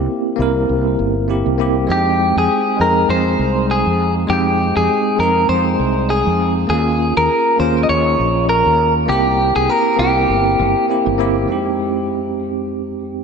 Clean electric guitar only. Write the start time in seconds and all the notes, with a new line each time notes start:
1.92 G4
2.38 G#4
2.81 A#4
3.10 C5
3.71 G#4
4.30 G4
4.77 G#4
5.20 A#4
5.49 C5
6.10 G#4
6.70 G#4
7.17 A#4
7.60 C5
7.83 D#5
7.89 C#5
8.49 A#4
9.09 G4
9.56 G#4
9.70 A#4
9.99 G4